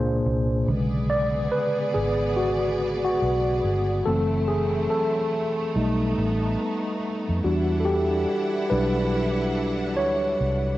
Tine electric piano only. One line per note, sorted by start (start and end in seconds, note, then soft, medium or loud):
0.00 0.69 A#2 medium
0.00 0.69 A#3 medium
0.00 0.69 D4 medium
0.00 0.69 G#4 medium
0.00 0.69 C5 medium
0.68 4.02 C#3 medium
0.68 4.02 D3 medium
0.68 4.02 G#3 medium
1.10 1.53 D5 loud
1.52 1.91 B4 loud
1.94 2.13 G#4 medium
2.36 3.01 F#4 medium
3.05 4.08 F#4 medium
4.06 5.28 E3 medium
4.06 5.29 A3 medium
4.06 5.29 C4 medium
4.06 4.49 A4 loud
4.48 4.91 G#4 medium
4.90 6.97 A4 medium
5.75 7.40 G3 medium
5.75 7.40 A3 medium
5.75 7.40 D#4 medium
7.44 8.67 G3 medium
7.44 8.67 D4 medium
7.44 8.66 F#4 medium
7.80 7.85 A4 medium
7.85 8.72 G4 medium
8.70 9.09 F#3 soft
8.70 9.09 G3 soft
8.70 9.09 D4 medium
8.70 9.93 B4 loud
9.97 10.78 C#5 loud